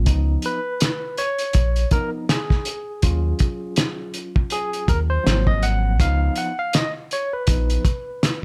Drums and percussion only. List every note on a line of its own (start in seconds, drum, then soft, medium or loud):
0.06 kick loud
0.06 closed hi-hat medium
0.42 closed hi-hat medium
0.80 snare loud
0.80 closed hi-hat loud
1.17 closed hi-hat medium
1.39 closed hi-hat medium
1.53 kick medium
1.53 closed hi-hat medium
1.76 closed hi-hat soft
1.91 kick loud
1.91 closed hi-hat medium
2.29 snare loud
2.29 closed hi-hat medium
2.50 kick medium
2.50 snare soft
2.65 closed hi-hat medium
3.02 kick loud
3.02 closed hi-hat medium
3.39 kick medium
3.39 closed hi-hat medium
3.76 snare loud
3.76 closed hi-hat loud
4.14 closed hi-hat medium
4.36 kick medium
4.50 closed hi-hat medium
4.73 closed hi-hat soft
4.88 kick loud
4.88 closed hi-hat medium
5.26 snare loud
5.26 closed hi-hat medium
5.47 kick medium
5.63 closed hi-hat medium
6.00 kick loud
6.00 closed hi-hat medium
6.35 closed hi-hat medium
6.73 snare loud
6.73 closed hi-hat loud
7.11 closed hi-hat medium
7.47 kick medium
7.47 closed hi-hat medium
7.70 closed hi-hat soft
7.85 kick loud
7.85 closed hi-hat medium
8.23 snare loud
8.23 closed hi-hat medium